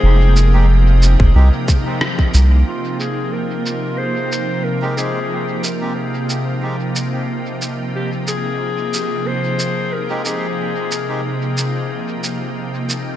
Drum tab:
SH |--x---x---x---x-|--x---x---x---x-|--x---x---x---x-|--x---x---x---x-|
SD |------------r---|----------------|----------------|----------------|
BD |-------o--o--o--|----------------|----------------|----------------|

SH |--x---x---x---x-|
SD |----------------|
BD |----------------|